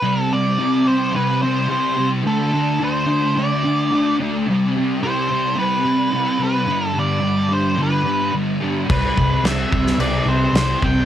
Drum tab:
CC |----------------|----------------|----------------|----------------|
SD |----------------|----------------|----------------|----------------|
BD |----------------|----------------|----------------|----------------|

CC |x---x---x---x---|
SD |----o--o----o---|
BD |o-o---o-------o-|